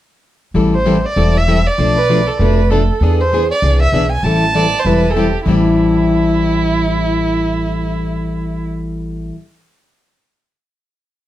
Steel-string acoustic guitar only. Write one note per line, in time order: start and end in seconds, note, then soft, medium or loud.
0.55 0.75 E3 medium
0.55 0.75 G3 medium
0.55 0.75 C4 medium
0.55 0.75 E4 medium
0.55 0.75 A4 medium
0.86 0.96 E3 medium
0.86 0.97 G3 medium
0.86 0.97 C4 medium
0.86 0.97 E4 medium
0.86 0.97 A4 medium
1.16 1.36 E3 medium
1.16 1.36 G3 medium
1.16 1.36 C4 medium
1.16 1.36 E4 medium
1.16 1.36 A4 medium
1.47 1.58 E3 medium
1.47 1.58 G3 medium
1.47 1.58 C4 medium
1.47 1.58 E4 medium
1.47 1.58 A4 medium
1.78 1.97 B2 medium
1.78 1.98 F3 medium
1.78 1.98 A3 medium
1.78 1.98 D4 medium
1.78 1.98 A4 medium
2.09 2.20 B2 medium
2.09 2.20 F3 medium
2.09 2.20 A3 medium
2.09 2.20 D4 medium
2.09 2.20 A4 medium
2.40 2.59 B2 medium
2.40 2.59 F3 medium
2.40 2.60 A3 medium
2.40 2.60 D4 medium
2.40 2.60 A4 medium
2.70 2.81 B2 medium
2.70 2.81 F3 medium
2.70 2.81 A3 medium
2.70 2.81 D4 medium
2.70 2.82 A4 medium
3.02 3.21 E3 medium
3.02 3.21 B3 medium
3.02 3.21 D4 medium
3.02 3.21 G#4 medium
3.32 3.43 E3 medium
3.32 3.43 B3 medium
3.32 3.43 D4 medium
3.32 3.43 G#4 medium
3.62 3.82 E3 medium
3.62 3.82 B3 medium
3.62 3.82 D4 medium
3.62 3.83 G#4 medium
3.93 4.04 E3 medium
3.93 4.04 B3 medium
3.93 4.04 D4 medium
3.93 4.04 G#4 medium
4.24 4.44 E3 medium
4.24 4.44 G3 medium
4.24 4.44 C4 medium
4.24 4.44 E4 medium
4.24 4.45 A4 medium
4.55 4.65 E3 medium
4.55 4.65 G3 medium
4.55 4.66 C4 medium
4.55 4.66 E4 medium
4.55 4.66 A4 medium
4.85 5.05 E3 medium
4.85 5.05 G3 medium
4.85 5.05 C4 medium
4.85 5.05 E4 medium
4.85 5.05 A4 medium
5.16 5.27 E3 medium
5.16 5.27 G3 medium
5.16 5.27 C4 medium
5.16 5.27 E4 medium
5.16 5.27 A4 medium
5.46 9.34 A2 medium
5.46 9.35 E3 medium
5.46 9.35 G3 medium
5.46 9.36 C4 medium
5.46 9.37 E4 medium
5.46 9.37 A4 medium